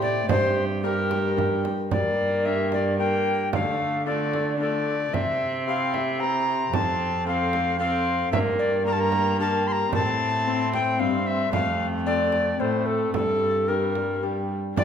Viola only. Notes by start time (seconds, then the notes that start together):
Already playing: G4
0.30 G4
0.83 G4
1.92 A#3
3.00 A#3
3.54 A3
4.07 A3
4.61 A3
5.14 C4
6.74 C4
7.27 C4
7.80 C4
8.33 A#3
8.87 A#3
9.93 C4
11.52 A3
12.61 A3
13.14 G3
13.68 G3
14.77 A#3